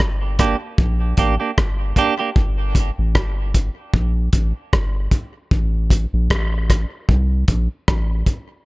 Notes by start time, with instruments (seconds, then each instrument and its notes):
0.00 sub bass G1, kick, cross-stick
0.39 clean electric guitar A#3 D4 G4, kick, cross-stick, closed hi-hat
0.78 sub bass A#1, kick
1.17 sub bass A1, clean electric guitar A#3 D4 G4, kick, closed hi-hat
1.40 clean electric guitar A#3 D4 G4
1.58 sub bass G1, kick, cross-stick
1.96 clean electric guitar A#3 D4 G4, kick, closed hi-hat
2.19 clean electric guitar A#3 D4 G4
2.36 sub bass G1, kick
2.75 kick, closed hi-hat
2.98 sub bass A1
3.15 sub bass G1, kick, cross-stick
3.54 kick, closed hi-hat
3.94 sub bass A#1, kick
4.33 sub bass A1, kick, closed hi-hat
4.73 sub bass G1, kick, cross-stick
5.11 kick, closed hi-hat
5.51 sub bass A1, kick
5.90 kick, closed hi-hat
6.13 sub bass A#1
6.30 kick, cross-stick
6.70 kick, cross-stick, closed hi-hat
7.09 sub bass C2, kick
7.48 sub bass A#1, kick, closed hi-hat
7.88 sub bass A1, kick, cross-stick
8.26 kick, closed hi-hat